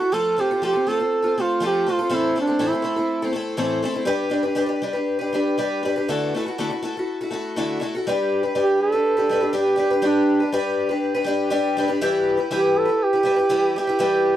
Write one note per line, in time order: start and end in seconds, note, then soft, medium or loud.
0.00 0.12 E4 soft
0.00 0.13 F#4 soft
0.00 0.15 F#4 medium
0.00 0.12 A4 medium
0.12 0.37 F3 medium
0.12 0.35 A3 medium
0.12 0.37 C4 medium
0.12 0.37 F4 medium
0.12 0.42 A4 loud
0.12 0.38 A4 medium
0.37 0.50 A3 medium
0.37 0.50 C4 medium
0.37 0.50 F4 medium
0.37 0.64 G4 medium
0.37 0.50 A4 medium
0.51 0.62 C4 soft
0.51 0.62 F4 soft
0.51 0.63 A4 soft
0.62 0.75 F3 medium
0.62 0.75 A3 medium
0.62 0.75 C4 medium
0.62 0.74 F4 medium
0.62 0.90 G4 medium
0.62 0.72 A4 medium
0.73 0.87 C4 soft
0.73 0.88 F4 soft
0.73 0.86 A4 soft
0.87 0.99 A3 medium
0.87 1.00 C4 medium
0.87 0.99 F4 medium
0.87 1.43 A4 loud
0.87 0.98 A4 medium
0.99 1.24 C4 soft
0.99 1.23 F4 soft
0.99 1.21 A4 soft
1.22 1.37 C4 soft
1.22 1.36 F4 soft
1.22 1.36 A4 soft
1.38 1.60 A3 medium
1.38 1.61 C4 medium
1.38 1.60 F4 medium
1.38 1.64 F4 medium
1.38 1.62 A4 medium
1.60 1.86 F3 medium
1.60 1.85 A3 medium
1.60 1.87 C4 medium
1.60 1.86 F4 medium
1.60 1.87 A4 medium
1.65 1.93 G4 medium
1.87 1.99 A3 medium
1.87 2.00 C4 medium
1.87 1.99 F4 medium
1.87 1.98 A4 medium
1.91 2.17 F4 medium
1.99 2.09 C4 soft
1.99 2.10 F4 soft
1.99 2.10 A4 medium
2.09 2.35 A2 medium
2.09 2.35 E3 medium
2.09 2.34 A3 medium
2.09 2.35 C4 medium
2.09 2.36 E4 medium
2.09 2.36 A4 medium
2.16 2.38 E4 medium
2.36 2.48 A3 medium
2.36 2.48 C4 medium
2.36 2.46 E4 medium
2.36 2.46 A4 medium
2.40 2.69 D4 medium
2.47 2.58 A3 soft
2.47 2.59 C4 soft
2.47 2.59 E4 medium
2.47 2.60 A4 soft
2.59 2.72 A2 medium
2.59 2.72 E3 medium
2.59 2.72 A3 medium
2.59 2.73 C4 medium
2.59 2.72 E4 medium
2.59 2.71 A4 medium
2.67 3.38 E4 medium
2.73 2.81 A3 soft
2.73 2.83 C4 soft
2.73 2.83 E4 soft
2.73 2.84 A4 soft
2.82 2.96 A3 medium
2.82 2.97 C4 medium
2.82 2.96 E4 medium
2.82 2.95 A4 medium
2.96 3.23 A3 soft
2.96 3.23 C4 soft
2.96 3.21 E4 soft
2.96 3.21 A4 soft
3.22 3.31 A3 soft
3.22 3.33 C4 soft
3.22 3.35 E4 medium
3.22 3.35 A4 medium
3.33 3.57 A3 medium
3.33 3.57 C4 medium
3.33 3.57 E4 medium
3.33 3.57 A4 medium
3.57 3.83 A2 medium
3.57 3.83 E3 medium
3.57 3.81 A3 medium
3.57 3.82 C4 medium
3.57 3.84 E4 medium
3.57 3.84 A4 medium
3.82 3.95 A3 medium
3.82 3.94 C4 medium
3.82 3.94 E4 medium
3.82 3.93 A4 medium
3.94 4.05 A3 soft
3.94 4.05 C4 medium
3.94 4.07 E4 medium
3.94 4.07 A4 soft
4.05 4.29 G3 medium
4.05 4.30 D4 medium
4.05 4.30 G4 medium
4.05 4.32 B4 medium
4.30 4.44 G3 medium
4.30 4.44 D4 medium
4.30 4.43 G4 medium
4.30 4.42 B4 medium
4.43 4.54 D4 soft
4.43 4.55 G4 medium
4.43 4.56 B4 medium
4.55 4.70 G3 medium
4.55 4.68 D4 medium
4.55 4.67 G4 medium
4.55 4.65 B4 medium
4.66 4.82 D4 soft
4.66 4.82 G4 medium
4.66 4.81 B4 medium
4.82 4.95 G3 medium
4.82 4.95 D4 medium
4.82 4.94 G4 medium
4.82 4.92 B4 medium
4.93 5.20 D4 soft
4.93 5.20 G4 soft
4.93 5.18 B4 medium
5.19 5.33 D4 medium
5.19 5.33 G4 medium
5.19 5.32 B4 medium
5.33 5.56 G3 medium
5.33 5.57 D4 medium
5.33 5.57 G4 medium
5.33 5.58 B4 medium
5.58 5.82 G3 medium
5.58 5.83 D4 medium
5.58 5.83 G4 medium
5.58 5.83 B4 medium
5.83 5.95 G3 medium
5.83 5.96 D4 medium
5.83 5.96 G4 medium
5.83 5.95 B4 medium
5.96 6.09 D4 soft
5.96 6.09 G4 soft
5.96 6.08 B4 medium
6.09 6.33 D3 medium
6.09 6.33 A3 medium
6.09 6.33 E4 medium
6.09 6.33 F#4 medium
6.09 6.34 A4 medium
6.34 6.46 A3 medium
6.34 6.47 E4 medium
6.34 6.47 F#4 medium
6.34 6.45 A4 medium
6.46 6.58 E4 soft
6.46 6.59 F#4 medium
6.46 6.58 A4 medium
6.58 6.70 D3 medium
6.58 6.70 A3 medium
6.58 6.71 E4 medium
6.58 6.70 F#4 medium
6.58 6.69 A4 medium
6.70 6.82 E4 soft
6.70 6.83 F#4 soft
6.70 6.82 A4 medium
6.82 6.95 A3 medium
6.82 6.95 E4 medium
6.82 6.96 F#4 medium
6.82 6.96 A4 medium
6.97 7.21 E4 soft
6.97 7.20 F#4 soft
6.97 7.20 A4 medium
7.21 7.30 E4 soft
7.21 7.32 F#4 soft
7.21 7.32 A4 medium
7.31 7.55 A3 medium
7.31 7.56 E4 medium
7.31 7.57 F#4 medium
7.31 7.58 A4 medium
7.56 7.82 D3 medium
7.56 7.78 A3 medium
7.56 7.80 E4 medium
7.56 7.81 F#4 medium
7.56 7.82 A4 medium
7.80 7.93 A3 medium
7.80 7.93 E4 medium
7.80 7.94 F#4 medium
7.80 7.94 A4 medium
7.95 8.07 E4 soft
7.95 8.07 F#4 medium
7.95 8.07 A4 medium
8.07 8.44 G3 medium
8.07 8.44 D4 medium
8.07 8.42 G4 medium
8.07 8.42 B4 medium
8.43 8.54 D4 soft
8.43 8.55 G4 soft
8.43 8.55 B4 soft
8.55 8.93 G3 medium
8.55 8.92 D4 medium
8.55 8.92 G4 medium
8.55 8.91 B4 medium
8.59 8.81 G4 loud
8.82 9.52 A4 loud
8.92 9.18 D4 soft
8.92 9.17 G4 soft
8.92 9.16 B4 medium
9.17 9.29 D4 soft
9.17 9.30 G4 soft
9.17 9.30 B4 medium
9.29 9.42 G3 medium
9.29 9.42 D4 medium
9.29 9.41 G4 medium
9.29 9.39 B4 medium
9.41 9.52 D4 soft
9.41 9.52 G4 soft
9.41 9.53 B4 soft
9.53 9.75 G3 medium
9.53 9.76 D4 medium
9.53 9.77 G4 medium
9.53 9.78 B4 medium
9.57 10.08 G4 medium
9.76 9.90 G3 medium
9.76 9.91 D4 medium
9.76 9.91 G4 medium
9.76 9.89 B4 medium
9.90 10.02 D4 soft
9.90 10.01 G4 medium
9.90 10.02 B4 medium
10.02 10.40 G3 medium
10.02 10.41 D4 medium
10.02 10.40 G4 medium
10.02 10.39 B4 medium
10.06 10.55 D4 medium
10.40 10.53 D4 soft
10.40 10.52 G4 soft
10.40 10.52 B4 medium
10.52 10.90 G3 medium
10.52 10.90 D4 medium
10.52 10.90 G4 medium
10.52 10.88 B4 medium
10.89 11.15 D4 soft
10.89 11.14 G4 medium
10.89 11.13 B4 medium
11.15 11.25 D4 soft
11.15 11.25 G4 medium
11.15 11.27 B4 medium
11.24 11.49 G3 medium
11.24 11.50 D4 medium
11.24 11.50 G4 medium
11.24 11.50 B4 medium
11.50 11.76 G3 medium
11.50 11.77 D4 medium
11.50 11.77 G4 medium
11.50 11.77 B4 loud
11.77 11.90 G3 medium
11.77 11.89 D4 medium
11.77 11.88 G4 medium
11.77 11.87 B4 medium
11.88 12.01 D4 medium
11.88 12.01 G4 medium
11.88 12.01 B4 medium
12.01 12.39 E3 medium
12.01 12.39 G3 medium
12.01 12.39 E4 medium
12.01 12.37 G4 loud
12.01 12.36 B4 loud
12.37 12.50 E4 soft
12.37 12.51 G4 soft
12.37 12.51 B4 soft
12.51 12.89 E3 medium
12.51 12.88 G3 medium
12.51 12.88 E4 medium
12.51 12.86 G4 medium
12.51 12.80 G4 medium
12.51 12.84 B4 medium
12.79 13.05 A4 loud
12.85 13.14 E4 soft
12.85 13.12 G4 soft
12.85 13.12 B4 medium
13.03 13.77 G4 loud
13.13 13.23 E4 soft
13.13 13.24 G4 soft
13.13 13.25 B4 medium
13.23 13.37 G3 medium
13.23 13.38 E4 medium
13.23 13.37 G4 medium
13.23 13.35 B4 medium
13.36 13.49 E4 soft
13.36 13.50 G4 soft
13.36 13.50 B4 medium
13.49 13.75 E3 medium
13.49 13.75 G3 medium
13.49 13.75 E4 medium
13.49 13.76 G4 medium
13.49 13.76 B4 medium
13.76 13.88 G3 medium
13.76 13.88 E4 medium
13.76 13.88 G4 medium
13.76 14.37 G4 medium
13.76 13.86 B4 medium
13.87 13.98 E4 medium
13.87 13.99 G4 medium
13.87 13.99 B4 medium
13.99 14.37 E3 medium
13.99 14.37 G3 medium
13.99 14.37 E4 medium
13.99 14.36 G4 medium
13.99 14.34 B4 medium